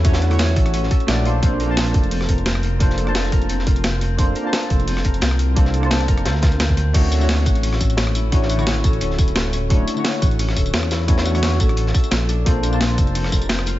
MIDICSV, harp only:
0, 0, Header, 1, 2, 480
1, 0, Start_track
1, 0, Tempo, 344828
1, 67, Time_signature, 4, 2, 24, 8
1, 19196, End_track
2, 0, Start_track
2, 0, Title_t, "Harp"
2, 0, Program_c, 0, 46
2, 0, Note_on_c, 0, 64, 77
2, 0, Note_on_c, 0, 66, 74
2, 0, Note_on_c, 0, 69, 76
2, 67, Note_on_c, 0, 61, 104
2, 301, Note_off_c, 0, 66, 0
2, 307, Note_on_c, 0, 66, 79
2, 540, Note_off_c, 0, 61, 0
2, 546, Note_on_c, 0, 61, 102
2, 780, Note_off_c, 0, 69, 0
2, 785, Note_on_c, 0, 69, 97
2, 1018, Note_off_c, 0, 61, 0
2, 1024, Note_on_c, 0, 61, 101
2, 1260, Note_off_c, 0, 69, 0
2, 1266, Note_on_c, 0, 69, 95
2, 1500, Note_off_c, 0, 61, 0
2, 1505, Note_on_c, 0, 61, 74
2, 1745, Note_on_c, 0, 62, 103
2, 1828, Note_off_c, 0, 61, 0
2, 1984, Note_on_c, 0, 60, 101
2, 2224, Note_on_c, 0, 70, 78
2, 2308, Note_off_c, 0, 69, 0
2, 2460, Note_off_c, 0, 60, 0
2, 2466, Note_on_c, 0, 60, 77
2, 2705, Note_on_c, 0, 69, 73
2, 2788, Note_off_c, 0, 70, 0
2, 2939, Note_off_c, 0, 60, 0
2, 2944, Note_on_c, 0, 60, 100
2, 3185, Note_on_c, 0, 70, 75
2, 3269, Note_off_c, 0, 69, 0
2, 3420, Note_off_c, 0, 60, 0
2, 3426, Note_on_c, 0, 60, 104
2, 3462, Note_off_c, 0, 64, 0
2, 3666, Note_on_c, 0, 65, 75
2, 3750, Note_off_c, 0, 66, 0
2, 3899, Note_off_c, 0, 60, 0
2, 3905, Note_on_c, 0, 60, 109
2, 4144, Note_on_c, 0, 69, 78
2, 4228, Note_off_c, 0, 70, 0
2, 4381, Note_off_c, 0, 60, 0
2, 4386, Note_on_c, 0, 60, 101
2, 4626, Note_on_c, 0, 70, 101
2, 4709, Note_off_c, 0, 69, 0
2, 4861, Note_off_c, 0, 60, 0
2, 4866, Note_on_c, 0, 60, 100
2, 5102, Note_off_c, 0, 65, 0
2, 5108, Note_on_c, 0, 65, 78
2, 5341, Note_off_c, 0, 60, 0
2, 5346, Note_on_c, 0, 60, 103
2, 5581, Note_off_c, 0, 60, 0
2, 5587, Note_on_c, 0, 60, 101
2, 5641, Note_off_c, 0, 62, 0
2, 5821, Note_off_c, 0, 60, 0
2, 5826, Note_on_c, 0, 60, 109
2, 6060, Note_off_c, 0, 70, 0
2, 6065, Note_on_c, 0, 70, 79
2, 6301, Note_off_c, 0, 60, 0
2, 6307, Note_on_c, 0, 60, 77
2, 6547, Note_on_c, 0, 69, 72
2, 6630, Note_off_c, 0, 70, 0
2, 6780, Note_off_c, 0, 60, 0
2, 6785, Note_on_c, 0, 60, 103
2, 7024, Note_on_c, 0, 70, 77
2, 7108, Note_off_c, 0, 69, 0
2, 7258, Note_off_c, 0, 60, 0
2, 7264, Note_on_c, 0, 60, 106
2, 7500, Note_off_c, 0, 65, 0
2, 7505, Note_on_c, 0, 65, 74
2, 7740, Note_off_c, 0, 60, 0
2, 7745, Note_on_c, 0, 60, 109
2, 7985, Note_on_c, 0, 69, 76
2, 8068, Note_off_c, 0, 70, 0
2, 8219, Note_off_c, 0, 60, 0
2, 8224, Note_on_c, 0, 60, 98
2, 8464, Note_on_c, 0, 70, 99
2, 8547, Note_off_c, 0, 69, 0
2, 8698, Note_off_c, 0, 60, 0
2, 8704, Note_on_c, 0, 60, 98
2, 8937, Note_off_c, 0, 65, 0
2, 8943, Note_on_c, 0, 65, 75
2, 9179, Note_off_c, 0, 60, 0
2, 9184, Note_on_c, 0, 60, 101
2, 9419, Note_off_c, 0, 60, 0
2, 9424, Note_on_c, 0, 60, 101
2, 9666, Note_on_c, 0, 61, 102
2, 9749, Note_off_c, 0, 60, 0
2, 9906, Note_on_c, 0, 69, 77
2, 9990, Note_off_c, 0, 70, 0
2, 10140, Note_off_c, 0, 61, 0
2, 10146, Note_on_c, 0, 61, 76
2, 10385, Note_on_c, 0, 66, 75
2, 10469, Note_off_c, 0, 65, 0
2, 10618, Note_off_c, 0, 61, 0
2, 10624, Note_on_c, 0, 61, 97
2, 10859, Note_off_c, 0, 69, 0
2, 10865, Note_on_c, 0, 69, 73
2, 11100, Note_off_c, 0, 61, 0
2, 11105, Note_on_c, 0, 61, 105
2, 11345, Note_on_c, 0, 64, 77
2, 11579, Note_off_c, 0, 61, 0
2, 11585, Note_on_c, 0, 61, 108
2, 11821, Note_off_c, 0, 66, 0
2, 11826, Note_on_c, 0, 66, 77
2, 12060, Note_off_c, 0, 61, 0
2, 12065, Note_on_c, 0, 61, 100
2, 12302, Note_off_c, 0, 69, 0
2, 12308, Note_on_c, 0, 69, 98
2, 12541, Note_off_c, 0, 61, 0
2, 12546, Note_on_c, 0, 61, 100
2, 12782, Note_off_c, 0, 64, 0
2, 12787, Note_on_c, 0, 64, 74
2, 13021, Note_off_c, 0, 61, 0
2, 13026, Note_on_c, 0, 61, 103
2, 13262, Note_off_c, 0, 61, 0
2, 13267, Note_on_c, 0, 61, 100
2, 13501, Note_off_c, 0, 61, 0
2, 13507, Note_on_c, 0, 61, 106
2, 13741, Note_off_c, 0, 69, 0
2, 13747, Note_on_c, 0, 69, 75
2, 13980, Note_off_c, 0, 61, 0
2, 13986, Note_on_c, 0, 61, 79
2, 14221, Note_off_c, 0, 66, 0
2, 14227, Note_on_c, 0, 66, 72
2, 14461, Note_off_c, 0, 61, 0
2, 14467, Note_on_c, 0, 61, 99
2, 14702, Note_off_c, 0, 69, 0
2, 14707, Note_on_c, 0, 69, 75
2, 14939, Note_off_c, 0, 61, 0
2, 14945, Note_on_c, 0, 61, 102
2, 15180, Note_off_c, 0, 64, 0
2, 15186, Note_on_c, 0, 64, 78
2, 15421, Note_off_c, 0, 61, 0
2, 15426, Note_on_c, 0, 61, 105
2, 15660, Note_off_c, 0, 66, 0
2, 15666, Note_on_c, 0, 66, 78
2, 15901, Note_off_c, 0, 61, 0
2, 15907, Note_on_c, 0, 61, 98
2, 16143, Note_off_c, 0, 69, 0
2, 16148, Note_on_c, 0, 69, 101
2, 16382, Note_off_c, 0, 61, 0
2, 16387, Note_on_c, 0, 61, 99
2, 16622, Note_off_c, 0, 69, 0
2, 16627, Note_on_c, 0, 69, 100
2, 16863, Note_off_c, 0, 61, 0
2, 16868, Note_on_c, 0, 61, 76
2, 17106, Note_on_c, 0, 62, 102
2, 17190, Note_off_c, 0, 61, 0
2, 17346, Note_on_c, 0, 60, 107
2, 17586, Note_on_c, 0, 70, 77
2, 17670, Note_off_c, 0, 69, 0
2, 17823, Note_off_c, 0, 60, 0
2, 17828, Note_on_c, 0, 60, 75
2, 18068, Note_on_c, 0, 69, 76
2, 18152, Note_off_c, 0, 70, 0
2, 18303, Note_off_c, 0, 60, 0
2, 18309, Note_on_c, 0, 60, 100
2, 18549, Note_on_c, 0, 70, 75
2, 18633, Note_off_c, 0, 69, 0
2, 18783, Note_off_c, 0, 60, 0
2, 18789, Note_on_c, 0, 60, 104
2, 18821, Note_off_c, 0, 64, 0
2, 19029, Note_on_c, 0, 65, 79
2, 19113, Note_off_c, 0, 66, 0
2, 19196, Note_off_c, 0, 60, 0
2, 19196, Note_off_c, 0, 62, 0
2, 19196, Note_off_c, 0, 65, 0
2, 19196, Note_off_c, 0, 70, 0
2, 19196, End_track
0, 0, End_of_file